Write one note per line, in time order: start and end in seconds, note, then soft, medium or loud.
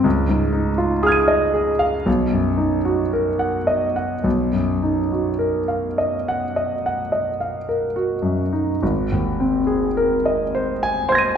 0.04 2.02 C#2 medium
0.29 0.69 G#2 soft
0.52 0.93 D#4 medium
0.78 1.18 F4 medium
1.03 1.44 G#4 medium
1.03 2.02 D#6 soft
1.03 2.04 F6 medium
1.08 2.05 G#6 soft
1.08 2.07 D#7 medium
1.28 1.69 D#5 medium
1.54 1.96 G#4 medium
1.79 2.06 F5 medium
2.06 4.21 B1 medium
2.32 2.75 F#2 soft
2.57 3.02 D#4 soft
2.85 3.29 F#4 soft
3.13 3.57 A#4 soft
3.39 3.84 F#5 medium
3.67 4.13 D#5 soft
3.96 4.25 F#5 soft
4.24 8.77 B1 medium
4.53 4.99 F#2 soft
4.83 5.29 D#4 soft
5.12 5.58 F#4 soft
5.39 5.86 A#4 soft
5.68 6.15 F5 soft
5.98 6.44 D#5 soft
6.28 6.73 F#5 medium
6.56 7.01 D#5 soft
6.86 7.30 F#5 soft
7.12 7.57 D#5 soft
7.41 7.84 F5 soft
7.69 8.13 A#4 soft
7.96 8.41 F#4 soft
8.22 8.69 F#2 soft
8.53 8.82 D#4 soft
8.83 11.37 G#1 medium
9.12 9.58 D#2 soft
9.40 9.86 C4 soft
9.67 10.14 G#4 soft
9.97 10.43 A#4 medium
10.26 10.70 D#5 soft
10.55 10.99 C5 medium
10.83 11.27 G#5 medium
11.09 11.37 C5 medium
11.09 11.37 C6 soft
11.09 11.37 G#6 medium
11.15 11.37 A#6 soft
11.15 11.37 D#7 medium